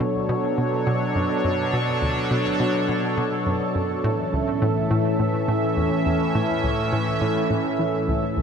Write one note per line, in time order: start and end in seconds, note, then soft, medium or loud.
0.00 4.00 B2 medium
0.00 0.20 B2 loud
0.00 4.00 F#3 medium
0.00 4.00 D4 medium
0.00 8.42 A4 medium
0.00 4.00 C#5 loud
0.29 0.49 B2 loud
0.58 0.78 B2 medium
0.87 1.14 B2 loud
1.16 1.28 F#2 medium
1.44 1.65 F#2 medium
1.73 1.93 B2 loud
2.02 2.22 D2 medium
2.31 2.51 B2 loud
2.60 2.80 B2 medium
2.89 3.09 B2 medium
3.18 3.45 B2 loud
3.47 3.59 F#2 medium
3.75 3.95 F#2 medium
4.04 4.24 A2 loud
4.04 8.42 A2 medium
4.04 8.42 E3 medium
4.04 8.42 C#4 medium
4.04 8.42 E5 medium
4.33 4.53 C#2 medium
4.62 4.82 A2 loud
4.91 5.11 A2 loud
5.20 5.40 A2 medium
5.48 5.76 A2 loud
5.77 5.89 E2 medium
6.06 6.26 E2 medium
6.35 6.55 A2 loud
6.64 6.84 C#2 medium
6.93 7.13 A2 loud
7.21 7.42 A2 loud
7.50 7.70 A2 medium
7.79 7.99 E3 medium
8.08 8.36 C#2 medium
8.37 8.42 C#2 medium